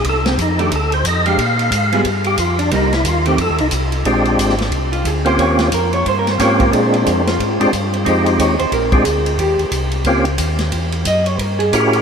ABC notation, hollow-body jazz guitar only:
X:1
M:4/4
L:1/8
Q:"Swing" 1/4=180
K:Bbmix
V:1 name="Hollow-body jazz guitar"
z3 [E,=A,D] z3 [_A,DG] | z3 [G,_CFA] z4 | [G,B,E] z2 [E,=A,C] z4 | z4 z F A c |
_d F B d (3c B c d B | A3 F4- F | z2 _d c B A3 | G z6 z |
z2 e ^c B A3 |]